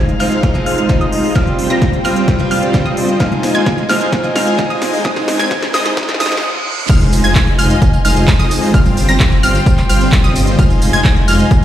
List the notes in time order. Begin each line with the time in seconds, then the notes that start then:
Already playing: F1 G#3 D#4 F4 G#4 C5 F5 G#5 G#6, riser
0.09 closed hi-hat
0.20 F1 F3 G#3 C4 D#4 F4 C5 F5 F6, open hi-hat
0.32 closed hi-hat
0.43 kick, snare, closed hi-hat
0.54 F3 G#3 C4 D#4, closed hi-hat
0.66 F1 G#3 D#4 F4 C5 F5 F6, open hi-hat
0.78 closed hi-hat
0.89 F3 G#3 C4 D#4, kick, snare, closed hi-hat
1.01 F1 G#3 D#4 F4 C5 D#5 D#6, closed hi-hat
1.12 open hi-hat
1.24 open hi-hat
1.35 G2 F3 G3 C4 F4 C5 F5 G5 F6, kick, snare, closed hi-hat
1.47 closed hi-hat
1.59 open hi-hat
1.69 G1 G2 F3 G3 C4 F4 C5 A#5 A#6, closed hi-hat
1.82 kick, snare, closed hi-hat
1.93 closed hi-hat
2.04 G1 G2 F3 G3 C4 F4 C5 F5 F6, open hi-hat
2.16 closed hi-hat
2.28 kick, snare, closed hi-hat
2.39 G2 F3 G3 C4 F4, closed hi-hat
2.51 G1 G3 C4 F4 C5 F5 F6, open hi-hat
2.62 closed hi-hat
2.73 G2 F3 G3 C4 F4, kick, snare, closed hi-hat
2.86 G1 G3 C4 F4 C5 D#5 D#6, closed hi-hat
2.97 open hi-hat
3.09 closed hi-hat
3.20 F3 G#3 C4 D#4 F4 C5 D#5 F5 G#5 F6, kick, snare, closed hi-hat
3.32 closed hi-hat
3.43 snare, open hi-hat
3.54 F1 F3 G#3 C4 D#4 F4 C5 G#5 G#6, closed hi-hat
3.66 kick, snare, closed hi-hat
3.78 closed hi-hat
3.89 F1 F3 G#3 C4 D#4 F4 C5 F5 F6, snare, open hi-hat
4.01 closed hi-hat
4.12 kick, snare, closed hi-hat
4.23 F3 G#3 C4 D#4, closed hi-hat
4.36 F1 G#3 D#4 F4 C5 F5 F6, snare, open hi-hat
4.47 closed hi-hat
4.58 F3 G#3 C4 D#4, kick, snare, closed hi-hat
4.70 F1 G#3 D#4 F4 C5 D#5 D#6, closed hi-hat
4.82 snare, open hi-hat
4.93 open hi-hat
5.04 G#2 D#3 G#3 C4 D#4 C5 D#5 D#6, kick, snare, closed hi-hat
5.16 snare, closed hi-hat
5.28 snare, open hi-hat
5.39 G#1 G#2 D#3 G#3 C4 D#4 C5 G#5 G#6, snare, closed hi-hat
5.51 kick, snare, closed hi-hat
5.62 snare, closed hi-hat
5.73 G#1 G#2 D#3 G#3 C4 D#4 C5 D#5 D#6, snare, open hi-hat
5.86 snare, closed hi-hat
5.97 kick, snare, closed hi-hat, reverse cymbal
6.03 snare
6.08 G#2 D#3 G#3 C4 D#4, snare, closed hi-hat
6.14 snare
6.19 G#1 G#2 D#3 G#3 C4 D#4 C5 D#5 D#6, snare, open hi-hat
6.26 snare
6.32 snare, closed hi-hat
6.37 snare
6.89 F1 G#3 D#4 F4 C5 D#5 F5 G#5 F6, kick, closed hi-hat, crash, tambourine, impact
7.01 closed hi-hat, tambourine
7.13 open hi-hat, tambourine
7.24 F1 G#3 D#4 F4 C5 G#5 G#6, closed hi-hat, tambourine
7.35 kick, clap, closed hi-hat, tambourine
7.47 closed hi-hat
7.59 F1 G#3 D#4 F4 C5 F5 F6, open hi-hat, tambourine
7.70 closed hi-hat, tambourine
7.82 kick, closed hi-hat, tambourine
7.93 closed hi-hat, tambourine
8.05 F1 G#3 D#4 F4 C5 F5 F6, open hi-hat, tambourine
8.16 closed hi-hat, tambourine
8.28 kick, clap, closed hi-hat, tambourine
8.39 F2 G#3 D#4 F4 C5 D#5 D#6, closed hi-hat, tambourine
8.51 open hi-hat, tambourine
8.62 open hi-hat, tambourine
8.74 G1 G3 C4 F4 C5 F5 G5 F6, kick, closed hi-hat, tambourine
8.86 closed hi-hat, tambourine
8.97 open hi-hat, tambourine
9.09 G1 G3 C4 F4 C5 A#5 A#6, closed hi-hat, tambourine
9.20 kick, clap, closed hi-hat, tambourine
9.32 closed hi-hat
9.43 G1 G3 C4 F4 C5 F5 F6, open hi-hat, tambourine
9.55 closed hi-hat, tambourine
9.66 kick, closed hi-hat, tambourine
9.78 clap, closed hi-hat, tambourine
9.89 G1 G3 C4 F4 C5 F5 F6, open hi-hat, tambourine
10.01 closed hi-hat, tambourine
10.12 kick, clap, closed hi-hat, tambourine
10.24 G1 G3 C4 F4 C5 D#5 D#6, closed hi-hat, tambourine
10.36 open hi-hat, tambourine
10.47 closed hi-hat, tambourine
10.59 F1 G#3 D#4 F4 C5 D#5 F5 G#5 F6, kick, closed hi-hat, tambourine
10.70 closed hi-hat, tambourine
10.82 open hi-hat, tambourine
10.93 F1 G#3 D#4 F4 C5 G#5 G#6, closed hi-hat, tambourine
11.05 kick, clap, closed hi-hat, tambourine
11.16 closed hi-hat
11.28 F1 G#3 D#4 F4 C5 F5 F6, open hi-hat, tambourine
11.39 closed hi-hat, tambourine
11.51 kick, closed hi-hat, tambourine